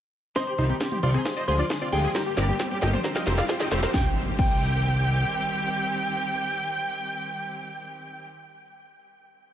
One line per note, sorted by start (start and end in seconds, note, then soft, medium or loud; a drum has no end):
0.36 0.52 C3 medium
0.36 0.52 D#3 medium
0.36 0.52 G3 medium
0.36 0.39 C4 loud
0.36 0.52 D#4 medium
0.36 0.94 C5 medium
0.36 0.43 C5 medium
0.36 0.43 D#5 medium
0.36 0.94 C6 loud
0.36 kick loud
0.36 snare soft
0.36 closed hi-hat medium
0.36 riser medium
0.47 0.54 G4 medium
0.47 0.56 C5 loud
0.58 0.73 C2 loud
0.58 0.74 C3 medium
0.58 0.74 D#3 medium
0.58 0.74 G3 medium
0.58 0.65 D#4 medium
0.58 0.74 D#4 medium
0.58 0.62 F4 medium
0.58 0.65 C5 medium
0.58 open hi-hat loud
0.69 0.78 C4 medium
0.69 0.76 G4 medium
0.69 closed hi-hat soft
0.80 0.96 C3 medium
0.80 0.96 D#3 medium
0.80 0.97 G3 medium
0.80 0.86 C4 loud
0.80 0.96 D#4 medium
0.80 0.87 G4 medium
0.80 kick loud
0.80 snare medium
0.80 closed hi-hat medium
0.92 0.95 C4 medium
0.92 0.99 G4 medium
0.92 mid tom medium
1.03 1.17 C2 loud
1.03 1.19 C3 medium
1.03 1.19 D#3 medium
1.03 1.06 G3 medium
1.03 1.19 G3 medium
1.03 1.19 D#4 loud
1.03 1.10 F4 medium
1.03 1.46 C5 medium
1.03 1.10 D5 loud
1.03 1.46 C6 medium
1.03 open hi-hat loud
1.14 1.20 C4 loud
1.14 1.21 G#4 medium
1.14 open hi-hat medium
1.25 1.41 D3 medium
1.25 1.41 F3 medium
1.25 1.41 G#3 medium
1.25 1.41 F4 medium
1.25 1.29 G4 loud
1.25 1.32 G#4 medium
1.25 kick loud
1.25 snare medium
1.25 closed hi-hat medium
1.37 1.43 C5 medium
1.37 1.45 D5 loud
1.37 1.43 D#5 medium
1.37 closed hi-hat soft
1.48 1.62 D2 loud
1.48 1.63 D3 medium
1.48 1.63 F3 medium
1.48 1.64 G#3 medium
1.48 1.64 F4 medium
1.48 1.51 G4 medium
1.48 1.55 G#4 medium
1.48 1.90 C5 medium
1.48 1.90 C6 medium
1.48 open hi-hat loud
1.59 1.67 D4 medium
1.59 1.66 F4 medium
1.59 1.66 D5 medium
1.59 closed hi-hat medium
1.70 1.86 D3 medium
1.70 1.86 F3 medium
1.70 1.86 G#3 medium
1.70 1.76 D4 loud
1.70 1.86 F4 medium
1.70 1.77 G#4 medium
1.70 kick loud
1.70 snare medium
1.70 closed hi-hat medium
1.81 1.90 C4 loud
1.81 1.88 F4 medium
1.81 1.88 D5 medium
1.92 2.07 D2 medium
1.92 2.08 D3 medium
1.92 2.08 F3 medium
1.92 1.96 G#3 medium
1.92 2.08 G#3 medium
1.92 2.08 F4 medium
1.92 3.85 G4 medium
1.92 2.00 G#4 medium
1.92 3.85 G5 medium
1.92 open hi-hat loud
2.04 2.09 G4 medium
2.04 2.11 G#4 medium
2.04 closed hi-hat medium
2.15 2.31 D3 medium
2.15 2.18 G3 loud
2.15 2.31 G3 medium
2.15 2.31 A#3 medium
2.15 2.31 G4 medium
2.15 2.22 A#4 medium
2.15 2.22 G5 loud
2.15 kick loud
2.15 snare medium
2.15 closed hi-hat medium
2.26 2.35 G4 loud
2.26 2.33 G4 medium
2.37 2.52 G1 loud
2.37 2.53 D3 medium
2.37 2.53 G3 medium
2.37 2.53 A#3 medium
2.37 2.41 C4 medium
2.37 2.53 G4 medium
2.37 2.44 A#4 medium
2.37 2.44 D5 loud
2.37 snare medium
2.37 open hi-hat loud
2.48 2.57 G3 medium
2.48 2.56 G4 medium
2.48 closed hi-hat medium
2.60 2.76 D3 medium
2.60 2.65 G3 loud
2.60 2.75 G3 medium
2.60 2.76 A#3 medium
2.60 2.67 G4 medium
2.60 2.76 G4 medium
2.60 kick loud
2.60 snare medium
2.60 closed hi-hat medium
2.71 2.74 G3 medium
2.71 2.78 G4 medium
2.82 2.96 G1 medium
2.82 2.86 D3 medium
2.82 2.98 D3 loud
2.82 2.98 G3 medium
2.82 2.98 A#3 medium
2.82 2.98 G4 loud
2.82 2.89 D#5 medium
2.82 2.89 G5 medium
2.82 snare medium
2.82 open hi-hat loud
2.93 2.99 G3 loud
2.93 3.00 C5 medium
2.93 closed hi-hat medium
2.93 mid tom medium
3.04 3.20 F3 medium
3.04 3.20 G3 loud
3.04 3.20 C4 medium
3.04 3.20 G4 medium
3.04 3.08 A#4 loud
3.04 3.11 C5 medium
3.04 kick loud
3.04 snare medium
3.04 closed hi-hat medium
3.15 3.22 D#5 medium
3.15 3.24 F5 loud
3.15 3.22 G5 medium
3.15 snare medium
3.15 closed hi-hat soft
3.27 3.41 F1 loud
3.27 3.43 F3 medium
3.27 3.43 G3 medium
3.27 3.43 C4 medium
3.27 3.43 G4 medium
3.27 3.30 A#4 medium
3.27 3.34 C5 medium
3.27 snare loud
3.27 open hi-hat loud
3.38 3.47 F4 medium
3.38 3.45 D5 medium
3.38 3.45 F5 medium
3.38 snare medium
3.38 closed hi-hat medium
3.49 3.65 F3 medium
3.49 3.65 G3 medium
3.49 3.65 C4 medium
3.49 3.55 F4 loud
3.49 3.65 G4 medium
3.49 3.56 C5 medium
3.49 kick loud
3.49 snare loud
3.49 closed hi-hat medium
3.60 3.69 D#4 loud
3.60 3.67 D#5 medium
3.60 3.67 G5 loud
3.60 snare medium
3.72 3.86 F1 medium
3.72 3.87 F3 medium
3.72 3.87 G3 medium
3.72 3.87 C4 medium
3.72 3.75 C4 medium
3.72 3.87 G4 medium
3.72 3.79 C5 medium
3.72 snare loud
3.72 open hi-hat loud
3.83 3.89 A#4 medium
3.83 3.90 C5 medium
3.83 snare loud
3.83 closed hi-hat medium
3.94 4.07 C2 loud
3.94 8.28 D#3 medium
3.94 8.28 G3 medium
3.94 4.07 C4 medium
3.94 8.28 C4 medium
3.94 8.28 G4 medium
3.94 4.07 G5 medium
3.94 kick loud
3.94 snare medium
3.94 impact medium
4.39 5.24 C2 loud
4.39 4.51 C4 medium
4.39 8.28 G5 loud
4.39 8.98 G5 medium
4.39 kick loud
4.39 crash medium